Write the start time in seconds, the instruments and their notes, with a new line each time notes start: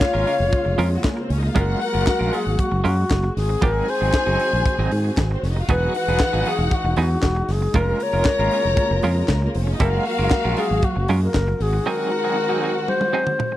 Already playing: string section C#3 G#3 A#3 F4 F5, alto flute C#5
0.01 kick, snare, clap, closed hi-hat
0.14 fingered electric bass G#1, clean electric guitar G#3 C#4 F4 A#4
0.26 clean electric guitar G#3 C#4 F4 A#4, open hi-hat
0.40 fingered electric bass F1
0.53 kick, closed hi-hat
0.65 fingered electric bass F1, muted clean electric guitar stroke
0.78 fingered electric bass F2, clean electric guitar G#3 C#4 F4 A#4, open hi-hat
0.91 muted clean electric guitar stroke
0.95 string section F#3 F#4
1.04 string section G#3 G#4, muted clean electric guitar stroke, kick, snare, clap, closed hi-hat
1.13 string section A#3 A#4
1.17 muted clean electric guitar stroke
1.22 string section C4 C5
1.30 fingered electric bass C#2, string section C#4 C#5, open hi-hat
1.38 string section D#4 D#5
1.43 string section F4 F5, muted clean electric guitar stroke
1.55 fingered electric bass F#1, string section F#3 F#4 F#5, clean electric guitar G#3 C#4 F4 A#4, alto flute A#4, kick, closed hi-hat
1.81 alto flute A#4, muted clean electric guitar stroke, open hi-hat
1.94 fingered electric bass F#1, clean electric guitar G#3 C#4 F4 A#4
2.06 muted clean electric guitar stroke, kick, snare, clap, closed hi-hat
2.19 fingered electric bass A#1, clean electric guitar G#3 C#4 F4 A#4
2.32 clean electric guitar G#3 C#4 F4 A#4, alto flute G#4, open hi-hat
2.47 fingered electric bass G#1
2.59 alto flute F#4, kick, closed hi-hat
2.72 fingered electric bass F#1, muted clean electric guitar stroke
2.84 fingered electric bass F#2, clean electric guitar G#3 C#4 F4 A#4, alto flute F#4, open hi-hat
2.97 muted clean electric guitar stroke
3.10 fingered electric bass F#1, muted clean electric guitar stroke, kick, snare, clap, closed hi-hat
3.24 muted clean electric guitar stroke
3.37 fingered electric bass G#1, string section D#3 C4 G#4 G#5, alto flute G#4, snare, open hi-hat
3.49 muted clean electric guitar stroke
3.62 fingered electric bass G#1, clean electric guitar F#3 C4 D#4 G#4, alto flute A#4, kick, closed hi-hat
3.88 alto flute C5, muted clean electric guitar stroke, open hi-hat
4.01 fingered electric bass G#1, clean electric guitar F#3 C4 D#4 G#4
4.13 kick, snare, clap, closed hi-hat
4.26 fingered electric bass F#1, clean electric guitar F#3 C4 D#4 G#4
4.39 clean electric guitar F#3 C4 D#4 G#4, open hi-hat
4.53 fingered electric bass A#1, muted clean electric guitar stroke
4.66 muted clean electric guitar stroke, kick, closed hi-hat
4.78 fingered electric bass G#1, clean electric guitar F#3 C4 D#4 G#4
4.91 fingered electric bass G#2, muted clean electric guitar stroke, open hi-hat
5.04 muted clean electric guitar stroke
5.17 fingered electric bass G#1, muted clean electric guitar stroke, kick, snare, clap, closed hi-hat
5.31 string section C4 C5, muted clean electric guitar stroke
5.43 fingered electric bass F1, string section C#4 C#5, snare, open hi-hat
5.51 string section D#4 D#5
5.56 string section F4 F5, muted clean electric guitar stroke
5.68 fingered electric bass E1, string section E3 G#3 D#4 F#4 F#5, clean electric guitar F#3 B3 D#4 G#4, alto flute B4, kick, closed hi-hat
5.94 alto flute B4, muted clean electric guitar stroke, open hi-hat
6.08 fingered electric bass E1, clean electric guitar F#3 B3 D#4 G#4
6.20 kick, snare, clap, closed hi-hat
6.33 fingered electric bass G#1, clean electric guitar F#3 B3 D#4 G#4
6.45 clean electric guitar F#3 B3 D#4 G#4, alto flute G#4, open hi-hat
6.59 fingered electric bass E1, muted clean electric guitar stroke
6.71 alto flute F#4, kick, closed hi-hat
6.84 fingered electric bass E1, muted clean electric guitar stroke
6.96 fingered electric bass E2, clean electric guitar F#3 B3 D#4 G#4, alto flute F#4, open hi-hat
7.10 muted clean electric guitar stroke
7.22 fingered electric bass E1, muted clean electric guitar stroke, kick, snare, clap, closed hi-hat
7.36 muted clean electric guitar stroke
7.49 fingered electric bass F#1, alto flute G#4, snare, open hi-hat
7.62 muted clean electric guitar stroke
7.73 fingered electric bass F1, string section C#3 A#3 F4 A#4 A#5, clean electric guitar G#3 C#4 F4 A#4, alto flute A#4, kick, closed hi-hat
8.00 alto flute C#5, muted clean electric guitar stroke, open hi-hat
8.13 fingered electric bass F1, clean electric guitar G#3 C#4 F4 A#4
8.25 muted clean electric guitar stroke, kick, snare, clap, closed hi-hat
8.39 fingered electric bass G#1, clean electric guitar G#3 C#4 F4 A#4
8.51 clean electric guitar G#3 C#4 F4 A#4, open hi-hat
8.65 fingered electric bass F1, muted clean electric guitar stroke
8.77 kick, closed hi-hat
8.91 fingered electric bass F1, muted clean electric guitar stroke
9.02 fingered electric bass F2, clean electric guitar G#3 C#4 F4 A#4, open hi-hat
9.16 muted clean electric guitar stroke
9.28 fingered electric bass C#2, muted clean electric guitar stroke, kick, snare, clap, closed hi-hat
9.42 string section A#3 A#4, muted clean electric guitar stroke
9.54 fingered electric bass F1, string section C4 C5, open hi-hat
9.62 string section C#4 C#5
9.67 muted clean electric guitar stroke
9.72 string section D#4 D#5
9.80 fingered electric bass F#1, string section F#3 F#4 F5, clean electric guitar G#3 C#4 F4 A#4, alto flute A#4, kick, closed hi-hat
10.05 alto flute A#4, open hi-hat
10.18 fingered electric bass F#1, clean electric guitar G#3 C#4 F4 A#4
10.31 kick, snare, clap, closed hi-hat
10.44 fingered electric bass A#1, clean electric guitar G#3 C#4 F4 A#4
10.57 clean electric guitar G#3 C#4 F4 A#4, alto flute G#4, open hi-hat
10.70 fingered electric bass G#1, muted clean electric guitar stroke
10.82 alto flute F#4, kick, closed hi-hat
10.96 fingered electric bass F#1, muted clean electric guitar stroke
11.08 fingered electric bass F#2, clean electric guitar G#3 C#4 F4 A#4, open hi-hat
11.21 alto flute A#4, muted clean electric guitar stroke
11.34 fingered electric bass F#1, muted clean electric guitar stroke, kick, snare, clap, closed hi-hat
11.48 muted clean electric guitar stroke
11.59 fingered electric bass G#1, string section D#3 G#3 C4 F#4 F#5, alto flute G#4, open hi-hat
11.73 muted clean electric guitar stroke
11.86 clean electric guitar F#3 C4 D#4 G#4, alto flute A#4
12.12 muted clean electric guitar stroke
12.24 clean electric guitar F#3 C4 D#4 G#4
12.37 muted clean electric guitar stroke
12.49 clean electric guitar F#3 C4 D#4 G#4
12.62 clean electric guitar F#3 C4 D#4 G#4
12.75 muted clean electric guitar stroke
12.88 alto flute C5, high tom
13.01 muted clean electric guitar stroke, high tom
13.13 clean electric guitar F#3 C4 D#4 G#4
13.26 muted clean electric guitar stroke, mid tom
13.39 muted clean electric guitar stroke, mid tom
13.52 muted clean electric guitar stroke